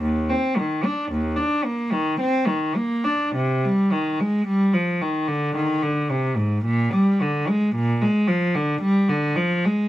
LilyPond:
\new Staff \with { instrumentName = "Cello" } { \clef bass \time 3/4 \key c \minor \tempo 4 = 55 ees,16 c'16 ees16 d'16 ees,16 d'16 bes16 ees16 c'16 ees16 bes16 d'16 | c16 g16 ees16 aes16 g16 f16 ees16 d16 ees16 d16 c16 aes,16 | bes,16 g16 d16 aes16 bes,16 aes16 f16 d16 g16 d16 f16 aes16 | }